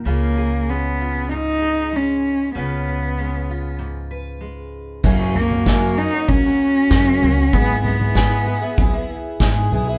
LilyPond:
<<
  \new Staff \with { instrumentName = "Steel-string acoustic guitar" } { \time 4/4 \key fis \major \tempo 4 = 96 << { <cis' eis' gis'>8 gis'8 cis'8 eis'4 gis'4. | <cis' eis' b'>8 b'8 cis'8 eis'4 b'4. | r1 | r1 | } \\ { cis4 gis4 gis,4 gis4 | cis4 gis4 gis,4 gis4 | r1 | r1 | } >> }
  \new Staff \with { instrumentName = "Cello" } { \time 4/4 \key fis \major ais4 b4 dis'4 cis'4 | b2 r2 | r8 ais4 dis'8 cis'2 | b8 b2 r4. | }
  \new Staff \with { instrumentName = "Twelve-string acoustic guitar" } { \time 4/4 \key fis \major r1 | r1 | <fis, cis fis ais cis' fis'>8 <fis ais cis' fis'>8 <fis, cis fis ais cis' fis'>8 <fis ais cis' fis'>16 <fis ais cis' fis'>16 <fis ais cis' fis'>16 <fis ais cis' fis'>8. <fis, cis fis ais cis' fis'>8 <fis ais cis' fis'>16 <fis ais cis' fis'>16 | <gis b e' gis'>8 <gis b e' gis'>8 <gis b e' gis'>8 <gis b e' gis'>16 <b e' gis'>16 <gis b e' gis'>16 <b e' gis'>8. <gis b e' gis'>8 <gis b e' gis'>16 <b e' gis'>16 | }
  \new Staff \with { instrumentName = "Upright bass" } { \clef bass \time 4/4 \key fis \major cis,1 | cis,1 | fis,2 r4 fis,8 cis,8 | gis,2 r4 gis,8 b,,8 | }
  \new DrumStaff \with { instrumentName = "Drums" } \drummode { \time 4/4 r4 r4 r4 r4 | r4 r4 r4 r4 | <cymc bd tomfh>8 tomfh16 tomfh16 <bd sn>4 <bd tomfh>4 <bd sn>8 tomfh8 | <bd tomfh>8 tomfh16 tomfh16 <bd sn>4 <bd tomfh>4 <bd sn>8 tomfh8 | }
>>